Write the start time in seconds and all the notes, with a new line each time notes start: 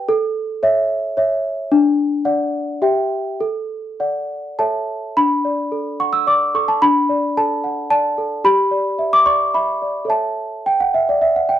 Already playing: G4 B4 G5
0.09 A4
0.63 C#5 E5
1.17 C#5 E5
1.72 D4
2.25 D5 F#5
2.82 G4 E5 G5
3.40 A4
4.00 D5 F#5
4.59 A4 C#5 E5 A5
5.17 D4 B5
5.45 D5
5.72 A4
6.00 F#5 C#6
6.13 E6
6.27 D5 D6
6.55 A4 C#6
6.68 A5
6.82 D4 B5
7.09 D5
7.37 A4 A5
7.64 F#5
7.90 D5 A5
8.18 A4
8.44 G4 B5
8.71 D5
8.99 E5
9.13 D6
9.26 D5 C#6
9.54 E5 B5
9.82 D5
10.05 A4 C#5 E5
10.10 A5
10.66 G5
10.80 F#5
10.94 E5
11.09 D5
11.22 E5
11.36 F#5
11.49 G5